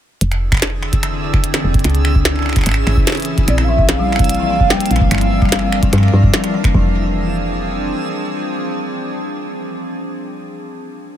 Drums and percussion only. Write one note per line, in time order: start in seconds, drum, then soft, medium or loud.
0.21 closed hi-hat medium
0.32 finger snap medium
0.32 closed hi-hat soft
0.52 finger snap medium
0.52 kick loud
0.55 finger snap medium
0.57 finger snap medium
0.60 finger snap soft
0.62 finger snap soft
0.62 snare loud
0.62 closed hi-hat medium
0.65 finger snap soft
0.70 finger snap soft
0.83 finger snap medium
0.93 kick medium
0.93 closed hi-hat medium
1.03 finger snap medium
1.03 closed hi-hat medium
1.34 finger snap medium
1.34 kick loud
1.44 closed hi-hat medium
1.54 finger snap medium
1.54 snare loud
1.54 closed hi-hat medium
1.74 kick loud
1.74 closed hi-hat soft
1.79 closed hi-hat soft
1.84 finger snap medium
1.84 closed hi-hat medium
1.90 closed hi-hat soft
1.95 closed hi-hat soft
2.05 finger snap medium
2.15 kick loud
2.25 snare loud
2.25 closed hi-hat medium
2.36 finger snap soft
2.39 finger snap soft
2.42 finger snap soft
2.46 finger snap soft
2.49 finger snap soft
2.53 finger snap soft
2.56 finger snap soft
2.56 kick loud
2.56 closed hi-hat medium
2.59 finger snap soft
2.61 finger snap soft
2.64 finger snap soft
2.66 finger snap medium
2.66 closed hi-hat medium
2.69 finger snap medium
2.71 finger snap medium
2.74 finger snap medium
2.87 finger snap medium
2.97 kick loud
3.07 finger snap medium
3.07 snare loud
3.07 closed hi-hat medium
3.10 snare medium
3.12 snare medium
3.15 snare medium
3.15 closed hi-hat soft
3.20 closed hi-hat soft
3.22 closed hi-hat soft
3.25 closed hi-hat soft
3.38 kick loud
3.38 closed hi-hat soft
3.48 finger snap soft
3.48 closed hi-hat medium
3.58 finger snap medium
3.78 kick loud
3.89 finger snap medium
3.89 snare loud
3.89 closed hi-hat medium
4.12 finger snap soft
4.16 finger snap medium
4.16 kick loud
4.16 closed hi-hat soft
4.24 closed hi-hat soft
4.29 closed hi-hat medium
4.35 closed hi-hat soft
4.60 kick loud
4.70 snare loud
4.80 closed hi-hat soft
4.86 closed hi-hat soft
4.91 closed hi-hat soft
4.96 finger snap medium
4.96 closed hi-hat soft
5.01 kick loud
5.11 finger snap medium
5.11 closed hi-hat medium
5.15 finger snap medium
5.18 finger snap soft
5.18 closed hi-hat soft
5.42 finger snap soft
5.42 kick loud
5.45 finger snap soft
5.49 finger snap soft
5.52 finger snap soft
5.52 snare loud
5.52 closed hi-hat medium
5.56 finger snap soft
5.59 finger snap soft
5.72 finger snap medium
5.83 kick loud
5.83 closed hi-hat soft
5.93 finger snap soft
5.93 closed hi-hat medium
5.98 finger snap soft
6.03 finger snap soft
6.08 finger snap soft
6.23 kick loud
6.34 snare loud
6.34 closed hi-hat medium
6.44 finger snap soft
6.44 closed hi-hat soft
6.64 finger snap medium
6.64 kick loud
6.64 closed hi-hat soft
6.74 kick loud